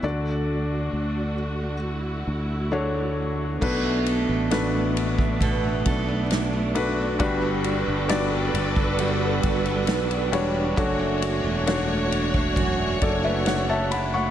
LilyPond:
<<
  \new Staff \with { instrumentName = "Felt piano" } { \time 4/4 \key b \minor \tempo 4 = 67 << { d4. r2 r8 | b,4. r2 r8 | g,4. r2 r8 | r2 r8 <a' d''>16 <b' e''>16 <cis'' fis''>16 <e'' a''>16 <fis'' b''>16 <fis'' cis'''>16 | } \\ { <a d' fis' d''>2 r4 <a d' fis' cis''>4 | <a d' fis' b'>4 <a d' fis' b'>2 r8 <a d' fis' b'>8 | <g d' fis' b'>4 <g d' fis' d''>2 r8 <g d' fis' cis''>8 | <a d' fis' cis''>4 <a d' fis' cis''>2 r4 | } >> }
  \new Staff \with { instrumentName = "String section" } { \time 4/4 \key b \minor << { <a fis'>1 | <a d'>1 | <g fis' b'>1 | cis''1 | } \\ { d'2 e'2 | b1 | a'1 | r1 | } >> }
  \new Staff \with { instrumentName = "Steel-string acoustic guitar" } { \time 4/4 \key b \minor r1 | <b, a'>16 a16 a'16 a16 d'16 a16 d'16 a16 <b, a'>16 a16 a'16 a16 d'16 a16 d'16 a16 | <g fis'>16 b16 fis'16 b16 d'16 b16 d'16 b16 <g fis'>16 b16 fis'16 b16 d'16 b16 d'16 b16 | <fis, fis'>16 a16 fis'16 a16 d'16 a16 d'16 a16 <fis, fis'>16 a16 fis'16 a16 d'16 a16 d'16 a16 | }
  \new Staff \with { instrumentName = "Fretless electric bass" } { \clef bass \time 4/4 \key b \minor d,4 d,4. d,4. | b,,8. a,,4.~ a,,16 b,,4. | g,,8. g,,8. g,,4 g,,8 b,,8 e,,8 | fis,,8. e,,4.~ e,,16 fis,,4. | }
  \new DrumStaff \with { instrumentName = "Drums" } \drummode { \time 4/4 r4 r4 r4 r4 | <cymc bd>8 cymr8 <cymr sn>8 cymr16 bd16 <bd cymr>8 <bd cymr>8 <cymr sn>8 cymr8 | <bd cymr>8 cymr8 <cymr sn>8 cymr16 bd16 cymr8 <bd cymr>16 cymr16 <cymr sn>16 cymr16 cymr8 | <bd cymr>8 cymr8 <cymr sn>8 cymr16 bd16 <bd cymr>8 <bd cymr>8 <cymr sn>8 cymr8 | }
>>